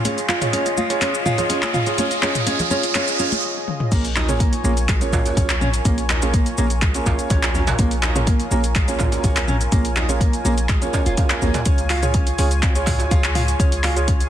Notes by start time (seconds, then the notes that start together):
Already playing: C#4 F4 G#4, riser
0.04 C#4 F4 G#4 C#5 D#5, closed hi-hat, high conga, shaker
0.18 closed hi-hat, shaker
0.29 F4, clap, muted conga, shaker
0.41 F4 G#4 C#5, closed hi-hat, mid tom, shaker
0.53 C#4 F4 G#4 C#5, closed hi-hat, high conga, shaker
0.66 closed hi-hat, muted conga, shaker
0.77 F4, high conga, shaker
0.90 F4 G#4 C#5, closed hi-hat, shaker
1.01 C#4, clap, closed hi-hat, muted conga, shaker
1.15 shaker
1.26 F4, mid tom, shaker
1.38 F4 G#4 C#5, closed hi-hat, muted conga, low conga, shaker
1.50 C#4 F4 G#4 C#5, closed hi-hat, shaker
1.62 clap, high conga, shaker
1.74 F4, mid tom, muted conga, shaker
1.86 F4 G#4 C#5, closed hi-hat, shaker
1.98 C#4 F4 G#4 C#5, closed hi-hat, high conga, shaker
2.11 closed hi-hat, shaker
2.22 C#4 F4 G#4 C#5, clap, muted conga, shaker
2.35 closed hi-hat, mid tom, shaker
2.46 C#4 F4 G#4 C#5, closed hi-hat, high conga, shaker
2.59 closed hi-hat, muted conga, low conga, shaker
2.70 C#4 F4 G#4 C#5, high conga, shaker
2.83 closed hi-hat, shaker
2.95 C#4 F4 G#4 C#5, clap, closed hi-hat, muted conga, shaker
3.08 closed hi-hat, shaker
3.19 C#4 F4 G#4 C#5, shaker
3.32 closed hi-hat, muted conga, high conga, shaker
3.68 high tom
3.80 mid tom
3.92 A#1 A#3 C#4 F4 G#4 A#4 C#5 G#5, kick, closed hi-hat, crash, shaker
4.05 closed hi-hat, shaker
4.16 D#4, clap, djembe tone, shaker
4.29 A#3 C#4 F4 G#4 C#5, closed hi-hat, mid tom, shaker
4.40 A#3, kick, closed hi-hat, shaker
4.53 closed hi-hat, shaker
4.64 A#1 A#3 C#4 F4 G#4 C#5, shaker
4.77 closed hi-hat, shaker
4.89 G#3, kick, clap, closed hi-hat, djembe tone, shaker
5.01 A#3 C#4 F4 G#4 C#5, closed hi-hat, shaker
5.13 F4, kick, mid tom, djembe slap, djembe tone, shaker
5.26 closed hi-hat, djembe tone, shaker
5.37 A#1 A#3 C#4 F4 G#4 C#5, kick, closed hi-hat, djembe bass, shaker
5.50 clap, closed hi-hat, shaker
5.61 C#4, mid tom, shaker
5.74 closed hi-hat, shaker
5.85 A#1 A#3 C#4 F4 G#4 C#5, kick, closed hi-hat, shaker
5.98 closed hi-hat, shaker
6.09 D#4, clap, djembe tone, shaker
6.22 A#3 C#4 F4 G#4 C#5, closed hi-hat, shaker
6.34 A#3, kick, closed hi-hat, shaker
6.46 closed hi-hat, shaker
6.58 A#1 A#3 C#4 F4 G#4 C#5, shaker
6.70 closed hi-hat, shaker
6.82 G#3, kick, clap, closed hi-hat, djembe tone, shaker
6.94 A#3 C#4 F4 G#4 C#5, closed hi-hat, shaker
7.06 A#1 F4, kick, djembe slap, djembe tone, shaker
7.19 closed hi-hat, shaker
7.30 A#1 A#3 C#4 F4 G#4 C#5, kick, closed hi-hat, djembe tone, shaker
7.43 clap, closed hi-hat, djembe slap, shaker
7.54 C#4, djembe bass, shaker
7.67 closed hi-hat, mid tom, djembe slap, shaker
7.79 A#1 A#3 C#4 F4 G#4 C#5, kick, closed hi-hat, shaker
7.91 closed hi-hat, shaker
8.03 D#4, clap, djembe tone, shaker
8.16 A#3 C#4 F4 G#4 C#5, closed hi-hat, mid tom, shaker
8.27 A#3, kick, closed hi-hat, shaker
8.40 closed hi-hat, shaker
8.51 A#1 A#3 C#4 F4 G#4 C#5, shaker
8.64 closed hi-hat, shaker
8.75 G#3, kick, clap, closed hi-hat, djembe tone, shaker
8.88 A#3 C#4 F4 G#4 C#5, closed hi-hat, shaker
8.99 F4, kick, mid tom, djembe slap, djembe tone, shaker
9.12 closed hi-hat, djembe tone, shaker
9.24 A#1 A#3 C#4 F4 G#4 C#5, kick, closed hi-hat, djembe bass, shaker
9.36 clap, closed hi-hat, shaker
9.48 C#4, mid tom, shaker
9.61 closed hi-hat, shaker
9.72 A#1 A#3 C#4 F4 G#4 C#5, kick, closed hi-hat, shaker
9.85 closed hi-hat, shaker
9.96 D#4, clap, djembe tone, shaker
10.09 A#3 C#4 F4 G#4 C#5, closed hi-hat, shaker
10.21 A#3, kick, closed hi-hat, shaker
10.33 closed hi-hat, shaker
10.45 A#1 A#3 C#4 F4 G#4 C#5, shaker
10.58 closed hi-hat, shaker
10.69 G#3, kick, clap, closed hi-hat, djembe tone, shaker
10.82 A#3 C#4 F4 G#4 C#5, closed hi-hat, shaker
10.93 C#4, kick, djembe slap, djembe tone, shaker
11.06 F1 F4, closed hi-hat, shaker
11.17 A#3 C#4 F4 G#4 F5, kick, closed hi-hat, djembe tone, shaker
11.29 clap, closed hi-hat, djembe slap, shaker
11.42 A#1 A#3 C#4 F4 G#4 C#5, djembe bass, shaker
11.54 closed hi-hat, mid tom, djembe slap, shaker
11.65 C#2 C#4 F4 G#4 C#5, kick, closed hi-hat, shaker
11.78 closed hi-hat, shaker
11.90 F4, clap, open hi-hat, djembe tone, shaker
12.03 F4 G#4 C#5, closed hi-hat, mid tom, shaker
12.14 C#4, kick, closed hi-hat, shaker
12.27 closed hi-hat, shaker
12.38 C#2 C#4 F4 G#4 C#5, open hi-hat, shaker
12.51 closed hi-hat, shaker
12.63 C4, kick, clap, closed hi-hat, djembe tone, shaker
12.75 F4 G#4 C#5, closed hi-hat, shaker
12.86 G#4, kick, open hi-hat, mid tom, djembe slap, djembe tone, shaker
12.99 closed hi-hat, djembe tone, shaker
13.11 C#2 F4 G#4 C#5, kick, closed hi-hat, djembe bass, shaker
13.24 clap, closed hi-hat, shaker
13.35 F4, open hi-hat, mid tom, shaker
13.48 closed hi-hat, shaker
13.59 C#2 C#4 F4 G#4 C#5, kick, closed hi-hat, shaker
13.72 closed hi-hat, shaker
13.83 F4, clap, open hi-hat, djembe tone, shaker
13.96 F4 G#4 C#5, closed hi-hat, shaker
14.08 C#4, kick, closed hi-hat, shaker
14.21 closed hi-hat, shaker